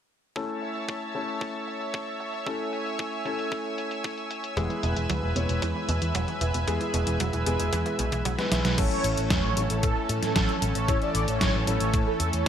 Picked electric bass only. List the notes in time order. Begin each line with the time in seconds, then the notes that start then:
4.57 E1
4.83 E1
4.97 E1
5.10 D2
5.23 E1
5.36 E1
5.49 E1
5.62 E2
5.89 E2
6.02 E2
6.15 E1
6.41 E1
6.54 E1
6.68 E2
6.94 E1
7.07 E1
7.20 E1
7.33 E1
7.47 E1
7.60 E1
7.73 E2
7.99 B1
8.12 B1
8.26 B1
8.52 B1
8.65 B1
8.78 A1
9.04 A1
9.18 A1
9.31 E1
9.44 A1
9.57 A1
9.70 A1
9.83 A2
10.10 A2
10.23 A2
10.36 A1
10.62 A1
10.75 A1
10.89 A2
11.15 A1
11.28 A1
11.41 A1
11.54 A1
11.68 A1
11.81 A1
11.94 A2
12.20 E2
12.33 E2